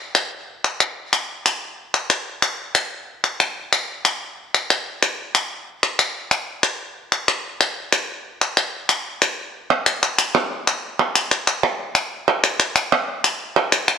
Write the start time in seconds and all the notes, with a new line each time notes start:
0.15 clap
0.64 clap
0.80 clap
1.13 clap
1.45 clap
1.94 clap
2.10 clap
2.42 clap
2.75 clap
3.24 clap
3.40 clap
3.73 clap
4.05 clap
4.54 clap
4.70 clap
5.02 clap
5.35 clap
5.83 clap
5.99 clap
6.31 clap
6.63 clap
7.12 clap
7.28 clap
7.61 clap
7.92 clap
8.41 clap
8.57 clap
8.89 clap
9.22 clap
9.70 clap
9.86 clap
10.03 clap
10.19 clap
10.35 clap
10.67 clap
10.99 clap
11.15 clap
11.31 clap
11.47 clap
11.63 clap
11.95 clap
12.28 clap
12.44 clap
12.60 clap
12.76 clap
12.92 clap
13.24 clap
13.56 clap
13.72 clap
13.88 clap